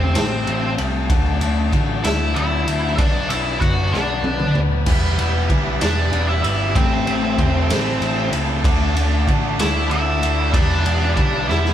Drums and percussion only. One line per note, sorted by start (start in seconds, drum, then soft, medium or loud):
0.15 snare loud
0.15 ride loud
0.47 ride medium
0.78 ride medium
1.10 kick loud
1.10 ride loud
1.41 ride medium
1.73 kick medium
1.73 ride medium
2.04 snare loud
2.04 ride loud
2.36 ride medium
2.68 ride medium
2.98 kick loud
2.98 ride loud
3.30 ride medium
3.61 kick medium
3.61 ride medium
3.94 snare medium
4.24 high tom medium
4.40 mid tom medium
4.55 mid tom loud
4.86 kick loud
4.86 crash loud
5.19 ride medium
5.50 kick medium
5.50 ride medium
5.81 snare loud
5.81 ride loud
6.13 ride medium
6.44 ride medium
6.75 kick loud
6.75 ride loud
7.07 ride medium
7.38 kick medium
7.38 ride medium
7.70 snare loud
7.70 ride loud
8.02 ride medium
8.33 ride medium
8.64 kick loud
8.64 ride loud
8.96 ride medium
9.28 kick medium
9.28 ride medium
9.59 snare loud
9.59 ride loud
9.91 ride medium
10.23 ride medium
10.54 kick loud
10.54 ride loud
10.86 ride medium
11.17 kick medium
11.17 ride medium
11.49 snare medium
11.65 snare medium